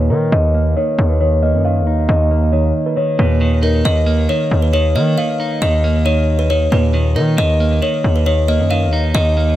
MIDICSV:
0, 0, Header, 1, 4, 480
1, 0, Start_track
1, 0, Tempo, 441176
1, 351, Time_signature, 4, 2, 24, 8
1, 10401, End_track
2, 0, Start_track
2, 0, Title_t, "Kalimba"
2, 0, Program_c, 0, 108
2, 112, Note_on_c, 0, 70, 71
2, 298, Note_off_c, 0, 70, 0
2, 353, Note_on_c, 0, 75, 115
2, 803, Note_off_c, 0, 75, 0
2, 833, Note_on_c, 0, 73, 80
2, 1170, Note_off_c, 0, 73, 0
2, 1194, Note_on_c, 0, 71, 73
2, 1286, Note_off_c, 0, 71, 0
2, 1311, Note_on_c, 0, 73, 82
2, 1498, Note_off_c, 0, 73, 0
2, 1551, Note_on_c, 0, 75, 80
2, 1738, Note_off_c, 0, 75, 0
2, 1793, Note_on_c, 0, 77, 83
2, 2244, Note_off_c, 0, 77, 0
2, 2271, Note_on_c, 0, 75, 107
2, 2723, Note_off_c, 0, 75, 0
2, 2748, Note_on_c, 0, 73, 70
2, 3088, Note_off_c, 0, 73, 0
2, 3114, Note_on_c, 0, 71, 79
2, 3207, Note_off_c, 0, 71, 0
2, 3232, Note_on_c, 0, 73, 87
2, 3419, Note_off_c, 0, 73, 0
2, 3472, Note_on_c, 0, 71, 75
2, 3923, Note_off_c, 0, 71, 0
2, 3949, Note_on_c, 0, 70, 83
2, 4136, Note_off_c, 0, 70, 0
2, 4191, Note_on_c, 0, 75, 111
2, 4643, Note_off_c, 0, 75, 0
2, 4670, Note_on_c, 0, 73, 79
2, 5009, Note_off_c, 0, 73, 0
2, 5031, Note_on_c, 0, 71, 68
2, 5125, Note_off_c, 0, 71, 0
2, 5152, Note_on_c, 0, 73, 84
2, 5338, Note_off_c, 0, 73, 0
2, 5392, Note_on_c, 0, 75, 81
2, 5579, Note_off_c, 0, 75, 0
2, 5631, Note_on_c, 0, 77, 87
2, 6082, Note_off_c, 0, 77, 0
2, 6113, Note_on_c, 0, 75, 114
2, 6563, Note_off_c, 0, 75, 0
2, 6590, Note_on_c, 0, 73, 80
2, 6929, Note_off_c, 0, 73, 0
2, 6950, Note_on_c, 0, 71, 78
2, 7044, Note_off_c, 0, 71, 0
2, 7073, Note_on_c, 0, 73, 90
2, 7259, Note_off_c, 0, 73, 0
2, 7312, Note_on_c, 0, 71, 79
2, 7763, Note_off_c, 0, 71, 0
2, 7792, Note_on_c, 0, 70, 74
2, 7978, Note_off_c, 0, 70, 0
2, 8032, Note_on_c, 0, 75, 112
2, 8483, Note_off_c, 0, 75, 0
2, 8512, Note_on_c, 0, 73, 78
2, 8850, Note_off_c, 0, 73, 0
2, 8874, Note_on_c, 0, 71, 68
2, 8967, Note_off_c, 0, 71, 0
2, 8990, Note_on_c, 0, 73, 82
2, 9177, Note_off_c, 0, 73, 0
2, 9230, Note_on_c, 0, 75, 77
2, 9418, Note_off_c, 0, 75, 0
2, 9472, Note_on_c, 0, 77, 81
2, 9923, Note_off_c, 0, 77, 0
2, 9950, Note_on_c, 0, 75, 109
2, 10401, Note_off_c, 0, 75, 0
2, 10401, End_track
3, 0, Start_track
3, 0, Title_t, "Clean electric guitar"
3, 0, Program_c, 1, 27
3, 0, Note_on_c, 1, 46, 81
3, 0, Note_on_c, 1, 51, 80
3, 111, Note_on_c, 1, 63, 83
3, 335, Note_off_c, 1, 51, 0
3, 348, Note_on_c, 1, 51, 94
3, 351, Note_off_c, 1, 63, 0
3, 352, Note_off_c, 1, 46, 0
3, 593, Note_on_c, 1, 58, 83
3, 822, Note_off_c, 1, 51, 0
3, 835, Note_on_c, 1, 51, 91
3, 1299, Note_off_c, 1, 51, 0
3, 1312, Note_on_c, 1, 51, 86
3, 1538, Note_off_c, 1, 58, 0
3, 1551, Note_on_c, 1, 58, 79
3, 1779, Note_off_c, 1, 51, 0
3, 1792, Note_on_c, 1, 51, 76
3, 2034, Note_on_c, 1, 63, 82
3, 2260, Note_off_c, 1, 51, 0
3, 2273, Note_on_c, 1, 51, 96
3, 2502, Note_off_c, 1, 58, 0
3, 2515, Note_on_c, 1, 58, 76
3, 2737, Note_off_c, 1, 51, 0
3, 2750, Note_on_c, 1, 51, 90
3, 3215, Note_off_c, 1, 51, 0
3, 3228, Note_on_c, 1, 51, 86
3, 3233, Note_off_c, 1, 63, 0
3, 3472, Note_on_c, 1, 46, 86
3, 3697, Note_off_c, 1, 51, 0
3, 3710, Note_on_c, 1, 51, 83
3, 3713, Note_off_c, 1, 58, 0
3, 3945, Note_on_c, 1, 63, 82
3, 4175, Note_off_c, 1, 51, 0
3, 4188, Note_off_c, 1, 63, 0
3, 4188, Note_on_c, 1, 51, 86
3, 4192, Note_off_c, 1, 46, 0
3, 4422, Note_on_c, 1, 58, 80
3, 4659, Note_off_c, 1, 51, 0
3, 4672, Note_on_c, 1, 51, 90
3, 5138, Note_off_c, 1, 51, 0
3, 5151, Note_on_c, 1, 51, 90
3, 5381, Note_off_c, 1, 58, 0
3, 5394, Note_on_c, 1, 58, 86
3, 5625, Note_off_c, 1, 51, 0
3, 5638, Note_on_c, 1, 51, 80
3, 5874, Note_on_c, 1, 63, 78
3, 6105, Note_off_c, 1, 51, 0
3, 6118, Note_on_c, 1, 51, 95
3, 6342, Note_off_c, 1, 58, 0
3, 6355, Note_on_c, 1, 58, 85
3, 6576, Note_off_c, 1, 51, 0
3, 6589, Note_on_c, 1, 51, 90
3, 7063, Note_off_c, 1, 51, 0
3, 7072, Note_off_c, 1, 63, 0
3, 7076, Note_on_c, 1, 51, 90
3, 7311, Note_on_c, 1, 46, 83
3, 7537, Note_off_c, 1, 51, 0
3, 7550, Note_on_c, 1, 51, 80
3, 7553, Note_off_c, 1, 58, 0
3, 7789, Note_on_c, 1, 63, 82
3, 8013, Note_off_c, 1, 51, 0
3, 8026, Note_on_c, 1, 51, 98
3, 8030, Note_off_c, 1, 63, 0
3, 8031, Note_off_c, 1, 46, 0
3, 8273, Note_on_c, 1, 58, 80
3, 8500, Note_off_c, 1, 51, 0
3, 8513, Note_on_c, 1, 51, 92
3, 8978, Note_off_c, 1, 51, 0
3, 8991, Note_on_c, 1, 51, 88
3, 9217, Note_off_c, 1, 58, 0
3, 9230, Note_on_c, 1, 58, 74
3, 9458, Note_off_c, 1, 51, 0
3, 9471, Note_on_c, 1, 51, 77
3, 9713, Note_on_c, 1, 63, 83
3, 9940, Note_off_c, 1, 51, 0
3, 9953, Note_on_c, 1, 51, 94
3, 10181, Note_off_c, 1, 58, 0
3, 10194, Note_on_c, 1, 58, 73
3, 10401, Note_off_c, 1, 51, 0
3, 10401, Note_off_c, 1, 58, 0
3, 10401, Note_off_c, 1, 63, 0
3, 10401, End_track
4, 0, Start_track
4, 0, Title_t, "808-style bass"
4, 0, Program_c, 2, 38
4, 0, Note_on_c, 2, 39, 108
4, 111, Note_on_c, 2, 51, 98
4, 127, Note_off_c, 2, 39, 0
4, 339, Note_off_c, 2, 51, 0
4, 352, Note_on_c, 2, 39, 118
4, 812, Note_off_c, 2, 39, 0
4, 1072, Note_on_c, 2, 39, 108
4, 1671, Note_on_c, 2, 42, 97
4, 1688, Note_off_c, 2, 39, 0
4, 1972, Note_on_c, 2, 39, 96
4, 1988, Note_off_c, 2, 42, 0
4, 2257, Note_off_c, 2, 39, 0
4, 2271, Note_on_c, 2, 39, 114
4, 2963, Note_off_c, 2, 39, 0
4, 3471, Note_on_c, 2, 39, 108
4, 4162, Note_off_c, 2, 39, 0
4, 4191, Note_on_c, 2, 39, 118
4, 4652, Note_off_c, 2, 39, 0
4, 4911, Note_on_c, 2, 39, 109
4, 5391, Note_on_c, 2, 51, 99
4, 5408, Note_off_c, 2, 39, 0
4, 5619, Note_off_c, 2, 51, 0
4, 6111, Note_on_c, 2, 39, 120
4, 7268, Note_off_c, 2, 39, 0
4, 7312, Note_on_c, 2, 39, 108
4, 7791, Note_on_c, 2, 51, 94
4, 7808, Note_off_c, 2, 39, 0
4, 8019, Note_off_c, 2, 51, 0
4, 8031, Note_on_c, 2, 39, 113
4, 8492, Note_off_c, 2, 39, 0
4, 8751, Note_on_c, 2, 39, 107
4, 9351, Note_on_c, 2, 42, 96
4, 9367, Note_off_c, 2, 39, 0
4, 9650, Note_on_c, 2, 39, 102
4, 9667, Note_off_c, 2, 42, 0
4, 9936, Note_off_c, 2, 39, 0
4, 9951, Note_on_c, 2, 39, 117
4, 10401, Note_off_c, 2, 39, 0
4, 10401, End_track
0, 0, End_of_file